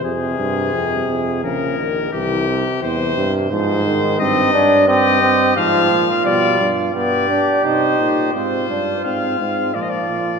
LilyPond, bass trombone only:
\new Staff \with { instrumentName = "Bass trombone" } { \clef bass \time 3/4 \key f \minor \tempo 4 = 86 f,8 g,8 f,8 f,8 bes,,4 | c,4 e,8 g,8 aes,4 | g,2 aes,8 bes,8 | b,8 g,8 g,8 r8 c8 bes,8 |
aes,8 g,8 aes,8 aes,8 bes,8 bes,8 | }